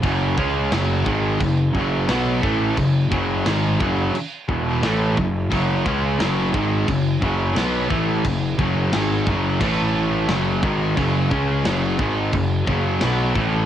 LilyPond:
<<
  \new Staff \with { instrumentName = "Distorted electric guitar" } { \clef bass \time 4/4 \key fis \minor \tempo 4 = 88 <fis, cis fis>8 <cis gis cis'>8 <fis, cis fis>8 <gis, dis gis>8 <fis, cis>8 <fis, cis fis>8 <b, fis b>8 <a, e a>8 | <fis, cis>8 <fis, cis fis>8 <gis, dis gis>8 <fis, cis fis>8 r8 <e, b, e>8 <a, e a>8 <fis, cis>8 | <fis, cis fis>8 <cis gis cis'>8 <fis, cis fis>8 <gis, dis gis>8 <fis, cis>8 <fis, cis fis>8 <b, fis b>8 <a, e a>8 | <fis, cis>8 <fis, cis fis>8 <gis, dis gis>8 <fis, cis fis>8 <a, e a>4 <fis, cis fis>8 <gis, dis gis>8 |
<fis, cis fis>8 <cis gis cis'>8 <fis, cis fis>8 <gis, dis gis>8 <fis, cis>8 <fis, cis fis>8 <b, fis b>8 <a, e a>8 | }
  \new Staff \with { instrumentName = "Distorted electric guitar" } { \clef bass \time 4/4 \key fis \minor <fis, cis fis>8 <cis gis cis'>8 <fis, cis fis>8 <gis, dis gis>8 <fis, cis>8 <fis, cis fis>8 <b, fis b>8 <a, e a>8 | <fis, cis>8 <fis, cis fis>8 <gis, dis gis>8 <fis, cis fis>8 r8 <e, b, e>8 <a, e a>8 <fis, cis>8 | <fis, cis fis>8 <cis gis cis'>8 <fis, cis fis>8 <gis, dis gis>8 <fis, cis>8 <fis, cis fis>8 <b, fis b>8 <a, e a>8 | <fis, cis>8 <fis, cis fis>8 <gis, dis gis>8 <fis, cis fis>8 <a, e a>4 <fis, cis fis>8 <gis, dis gis>8 |
<fis, cis fis>8 <cis gis cis'>8 <fis, cis fis>8 <gis, dis gis>8 <fis, cis>8 <fis, cis fis>8 <b, fis b>8 <a, e a>8 | }
  \new Staff \with { instrumentName = "Overdriven electric guitar" } { \clef bass \time 4/4 \key fis \minor <fis, cis fis>8 <cis gis cis'>8 <fis, cis fis>8 <gis, dis gis>8 <fis, cis>8 <fis, cis fis>8 <b, fis b>8 <a, e a>8 | <fis, cis>8 <fis, cis fis>8 <gis, dis gis>8 <fis, cis fis>8 r8 <e, b, e>8 <a, e a>8 <fis, cis>8 | <fis, cis fis>8 <cis gis cis'>8 <fis, cis fis>8 <gis, dis gis>8 <fis, cis>8 <fis, cis fis>8 <b, fis b>8 <a, e a>8 | <fis, cis>8 <fis, cis fis>8 <gis, dis gis>8 <fis, cis fis>8 <a, e a>4 <fis, cis fis>8 <gis, dis gis>8 |
<fis, cis fis>8 <cis gis cis'>8 <fis, cis fis>8 <gis, dis gis>8 <fis, cis>8 <fis, cis fis>8 <b, fis b>8 <a, e a>8 | }
  \new Staff \with { instrumentName = "Picked electric bass" } { \clef bass \time 4/4 \key fis \minor fis,,8 cis,8 fis,,8 gis,,8 fis,,8 fis,,8 b,,8 a,,8 | fis,,8 fis,,8 gis,,8 fis,,8 r8 e,,8 a,,8 fis,,8 | fis,,8 cis,8 fis,,8 gis,,8 fis,,8 fis,,8 b,,8 a,,8 | fis,,8 fis,,8 gis,,8 fis,,8 a,,4 fis,,8 gis,,8 |
fis,,8 cis,8 fis,,8 gis,,8 fis,,8 fis,,8 b,,8 a,,8 | }
  \new DrumStaff \with { instrumentName = "Drums" } \drummode { \time 4/4 <cymc bd>8 bd8 <cymc sn>8 bd8 <cymc bd>8 bd8 <cymc sn>8 bd8 | <cymc bd>8 bd8 <cymc sn>8 bd8 cymc8 bd8 <cymc sn>8 bd8 | <cymc bd>8 bd8 <cymc sn>8 bd8 <cymc bd>8 bd8 <cymc sn>8 bd8 | <cymc bd>8 bd8 <cymc sn>8 bd8 <cymc bd>4 <cymc sn>8 bd8 |
<cymc bd>8 bd8 <cymc sn>8 bd8 <cymc bd>8 bd8 <cymc sn>8 bd8 | }
>>